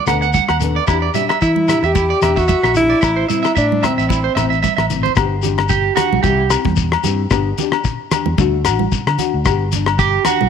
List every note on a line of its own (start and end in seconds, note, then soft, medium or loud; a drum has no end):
0.06 0.38 D2 medium
0.06 0.25 B3 soft
0.06 0.25 D4 medium
0.06 0.24 A4 medium
0.06 0.17 F#5 medium
0.06 cross-stick medium
0.06 closed hi-hat soft
0.06 low conga soft
0.06 low agogo medium
0.06 shekere medium
0.22 0.30 F#5 medium
0.22 shekere soft
0.33 0.43 F#5 medium
0.33 kick medium
0.33 high conga medium
0.33 shekere medium
0.49 0.78 D#2 medium
0.49 0.56 F#5 medium
0.49 cross-stick medium
0.49 low agogo medium
0.60 0.79 B3 soft
0.60 0.79 D4 soft
0.60 0.78 A4 soft
0.60 closed hi-hat soft
0.60 low conga medium
0.60 shekere medium
0.76 0.84 D5 medium
0.87 1.08 E2 medium
0.87 1.05 B3 medium
0.87 1.06 D4 medium
0.87 0.97 E4 medium
0.87 1.06 G4 medium
0.87 kick medium
0.87 cross-stick medium
0.87 low agogo medium
0.87 shekere medium
1.02 1.10 D5 medium
1.14 1.33 D4 soft
1.14 1.32 G4 medium
1.14 1.24 E5 medium
1.14 closed hi-hat soft
1.14 high conga medium
1.14 shekere medium
1.29 1.37 E5 medium
1.29 cross-stick medium
1.29 low agogo medium
1.42 1.73 E3 medium
1.42 1.87 E4 medium
1.42 1.51 E5 medium
1.42 kick medium
1.42 shekere medium
1.56 high conga medium
1.68 1.87 D4 soft
1.68 1.86 G4 soft
1.68 1.78 E5 medium
1.68 cross-stick medium
1.68 closed hi-hat medium
1.68 low agogo medium
1.68 shekere medium
1.83 2.12 E2 medium
1.83 2.39 G4 medium
1.83 1.91 E5 medium
1.83 shekere soft
1.95 2.04 E4 medium
1.95 kick medium
1.95 high conga medium
1.95 shekere medium
2.10 2.18 D5 medium
2.21 2.53 E2 medium
2.21 2.40 D4 soft
2.21 2.39 G4 soft
2.21 2.32 E5 medium
2.21 cross-stick medium
2.21 closed hi-hat soft
2.21 low conga soft
2.21 low agogo medium
2.21 shekere medium
2.36 2.76 F#4 medium
2.36 2.44 E5 medium
2.36 kick medium
2.36 shekere soft
2.48 2.58 E5 medium
2.48 kick medium
2.48 high conga medium
2.48 shekere medium
2.63 2.93 A#1 medium
2.63 2.71 E5 medium
2.63 cross-stick medium
2.63 low agogo medium
2.75 2.94 D4 soft
2.75 3.26 E4 loud
2.75 2.93 G4 soft
2.75 closed hi-hat soft
2.75 low conga medium
2.75 shekere medium
2.90 2.98 D5 medium
3.01 3.23 A1 medium
3.01 3.20 E3 medium
3.01 3.11 E4 medium
3.01 3.21 E4 medium
3.01 muted nylon-string guitar stroke medium
3.01 kick medium
3.01 cross-stick medium
3.01 low agogo medium
3.01 shekere medium
3.16 3.24 C5 medium
3.28 3.54 E4 medium
3.28 3.47 E4 medium
3.28 3.38 E5 medium
3.28 closed hi-hat soft
3.28 high conga medium
3.28 shekere medium
3.33 3.48 C4 soft
3.43 3.51 E5 medium
3.43 cross-stick medium
3.43 low agogo medium
3.43 shekere soft
3.55 3.88 A2 medium
3.55 3.87 D4 medium
3.55 3.65 E5 medium
3.55 kick medium
3.55 shekere medium
3.72 high conga medium
3.83 4.65 C4 medium
3.83 4.02 C4 soft
3.83 4.00 E4 soft
3.83 3.92 E5 medium
3.83 cross-stick medium
3.83 closed hi-hat soft
3.83 low conga medium
3.83 low agogo medium
3.83 shekere medium
3.98 4.27 A1 medium
3.98 4.06 E5 medium
3.98 shekere soft
4.09 4.19 E4 medium
4.09 kick medium
4.09 high conga medium
4.09 shekere medium
4.24 4.32 C5 medium
4.35 4.68 A1 medium
4.35 4.54 E4 soft
4.35 4.45 E5 medium
4.35 cross-stick medium
4.35 closed hi-hat soft
4.35 low conga soft
4.35 low agogo medium
4.35 shekere medium
4.39 4.55 C4 soft
4.50 4.58 E5 medium
4.50 shekere soft
4.63 4.72 E5 medium
4.63 kick medium
4.63 high conga medium
4.63 shekere medium
4.77 5.07 A1 medium
4.77 4.85 E5 medium
4.77 cross-stick medium
4.77 high conga soft
4.77 low agogo medium
4.90 5.09 C4 soft
4.90 5.07 E4 medium
4.90 closed hi-hat soft
4.90 low conga soft
4.90 shekere loud
5.03 5.11 C5 medium
5.03 low conga medium
5.03 shekere soft
5.16 5.89 G1 medium
5.16 5.34 B3 medium
5.16 5.34 D4 medium
5.16 5.35 G4 medium
5.16 kick medium
5.16 cross-stick medium
5.16 low agogo medium
5.16 shekere medium
5.42 5.62 D4 medium
5.42 5.61 G4 medium
5.42 closed hi-hat soft
5.42 low conga medium
5.42 shekere medium
5.58 cross-stick medium
5.58 low agogo medium
5.69 5.95 G4 medium
5.69 kick medium
5.69 shekere medium
5.96 6.22 F#4 medium
5.96 6.15 G4 soft
5.96 cross-stick medium
5.96 closed hi-hat medium
5.96 low conga medium
5.96 low agogo medium
5.96 shekere medium
6.00 6.16 D4 soft
6.13 6.22 B1 medium
6.13 high conga medium
6.23 6.55 C2 medium
6.23 6.41 E3 medium
6.23 6.41 C4 medium
6.23 6.42 E4 loud
6.23 6.50 G4 medium
6.23 6.42 G4 medium
6.23 kick medium
6.23 high conga medium
6.23 low conga medium
6.23 shekere medium
6.50 6.69 C4 soft
6.50 6.69 E4 soft
6.50 6.68 G4 medium
6.50 cross-stick medium
6.50 closed hi-hat soft
6.50 low agogo medium
6.50 shekere medium
6.65 6.95 E2 medium
6.65 kick medium
6.65 high conga medium
6.76 kick medium
6.76 shekere loud
6.92 cross-stick medium
6.92 low agogo medium
7.03 7.25 G2 loud
7.03 7.23 C4 soft
7.03 7.22 E4 soft
7.03 7.21 G4 medium
7.03 closed hi-hat soft
7.03 low conga medium
7.03 shekere medium
7.30 7.51 G1 loud
7.30 7.49 B3 medium
7.30 7.49 D4 medium
7.30 7.49 G4 medium
7.30 kick medium
7.30 cross-stick medium
7.30 low agogo medium
7.30 shekere medium
7.58 7.77 D4 medium
7.58 7.76 G4 medium
7.58 closed hi-hat soft
7.58 low conga medium
7.58 shekere medium
7.72 cross-stick medium
7.72 low agogo medium
7.84 kick medium
7.84 shekere loud
8.11 8.30 D4 soft
8.11 8.29 G4 medium
8.11 cross-stick medium
8.11 closed hi-hat medium
8.11 low conga medium
8.11 low agogo medium
8.11 shekere medium
8.26 8.36 E2 medium
8.26 high conga medium
8.38 8.67 D2 loud
8.38 8.56 A3 medium
8.38 8.56 D4 medium
8.38 8.56 F#4 loud
8.38 kick medium
8.38 high conga medium
8.38 low conga medium
8.38 shekere medium
8.64 8.86 A1 loud
8.64 8.83 D4 soft
8.64 8.82 F#4 medium
8.64 cross-stick medium
8.64 closed hi-hat soft
8.64 low agogo medium
8.64 shekere medium
8.79 high conga medium
8.92 kick medium
8.92 shekere medium
9.07 9.16 D3 medium
9.07 cross-stick medium
9.07 low agogo medium
9.18 9.37 D4 soft
9.18 9.36 F#4 medium
9.18 closed hi-hat soft
9.18 low conga medium
9.18 shekere medium
9.34 9.47 D2 medium
9.45 10.17 G1 medium
9.45 9.62 B3 medium
9.45 9.63 D4 medium
9.45 9.63 G4 medium
9.45 kick medium
9.45 cross-stick medium
9.45 low agogo medium
9.45 shekere medium
9.72 9.91 D4 medium
9.72 closed hi-hat soft
9.72 low conga medium
9.72 shekere medium
9.86 cross-stick medium
9.86 low agogo medium
9.99 10.25 G4 loud
9.99 kick medium
9.99 shekere medium
10.25 10.44 D4 soft
10.25 10.49 F#4 medium
10.25 10.43 G4 medium
10.25 cross-stick medium
10.25 closed hi-hat medium
10.25 low conga medium
10.25 low agogo medium
10.25 shekere medium
10.41 10.49 B1 medium
10.41 high conga medium